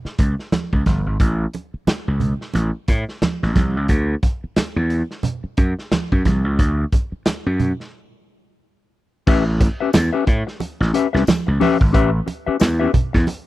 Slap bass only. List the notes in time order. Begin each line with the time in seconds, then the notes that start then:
0.05 muted slap bass stroke
0.19 C#2
0.73 C#2
0.86 G1
1.06 G#1
1.20 A1
1.74 muted slap bass stroke
1.87 muted slap bass stroke
2.08 C#2
2.55 A1
2.88 A2
3.43 A1
3.56 C2
3.77 C#2
3.89 D2
4.44 muted slap bass stroke
4.57 muted slap bass stroke
4.76 E2
5.44 muted slap bass stroke
5.58 F#2
6.12 F#2
6.26 C2
6.45 C#2
6.59 D2
7.12 muted slap bass stroke
7.26 muted slap bass stroke
7.46 F#2
9.27 A1
9.94 E2
10.27 A2
10.81 A1
11.14 C2
11.48 C#2
11.81 G#1
11.94 A1
12.48 muted slap bass stroke
12.61 E2
13.14 E2